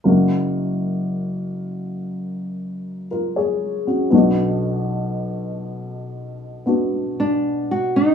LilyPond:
<<
  \new Staff \with { instrumentName = "Nylon-string guitar" } { \time 4/4 \key fis \major \tempo 4 = 59 r1 | r2. d'8 fis'16 dis'16 | }
  \new Staff \with { instrumentName = "Upright piano" } { \time 4/4 \key fis \major << { r2. <eis' ais'>16 <gis' cis''>8 <cis' fis'>16~ | <cis' fis'>16 r2. r8. | } \\ { <ais cis' fis'>1 | <b d' fis'>2~ <b d' fis'>8 <b d' fis'>4. | } >> }
  \new Staff \with { instrumentName = "Upright piano" } { \clef bass \time 4/4 \key fis \major <fis,, fis,>1 | <b,, b,>1 | }
>>